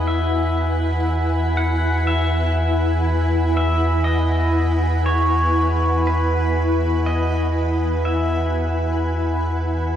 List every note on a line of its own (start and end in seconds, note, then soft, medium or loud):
0.00 9.96 E2 medium
0.00 9.96 E4 medium
0.00 9.96 B4 medium
0.00 9.96 F#5 medium
0.00 9.96 G#5 medium
0.00 9.96 B5 medium
0.07 1.57 E5 medium
1.57 2.07 F#5 medium
2.07 3.56 E5 medium
3.57 4.04 E5 medium
4.04 5.08 D#5 medium
5.06 6.02 C#5 medium
6.07 7.10 B4 medium
7.06 8.05 D#5 medium
8.05 9.96 E5 medium